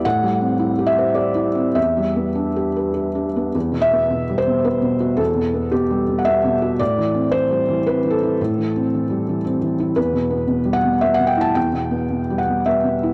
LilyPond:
<<
  \new Staff \with { instrumentName = "Felt piano" } { \time 3/4 \key e \minor \tempo 4 = 111 fis''4. e''8 d''4 | e''2~ e''8 r8 | r8 e''4 c''8 b'4 | a'4 g'8.~ g'32 fis''32 e''4 |
d''4 c''4 b'8 a'8~ | a'2 r4 | b'4. fis''8 e''16 fis''16 g''16 a''16 | g''4. fis''8 e''4 | }
  \new Staff \with { instrumentName = "Felt piano" } { \clef bass \time 3/4 \key e \minor \tuplet 3/2 { a,8 g8 c'8 e'8 g'8 c''8 g'8 e'8 c'8 } | \tuplet 3/2 { e,8 g8 b8 d'8 g'8 b'8 g'8 d'8 b8 } | \tuplet 3/2 { e,8 b,8 b8 b,8 g8 b,8 b8 b,8 fis'8 } | \tuplet 3/2 { e,8 b,8 b8 b,8 g8 b,8 b8 b,8 fis'8 } |
\tuplet 3/2 { a,8 e8 c'8 e8 g8 e8 c'8 e8 e'8 } | \tuplet 3/2 { a,8 e8 c'8 e8 g8 e8 c'8 e8 e'8 } | \tuplet 3/2 { e,8 b,8 b8 b,8 g8 b,8 b8 b,8 e'8 } | \tuplet 3/2 { e,8 b,8 b8 b,8 g8 b,8 b8 b,8 e'8 } | }
>>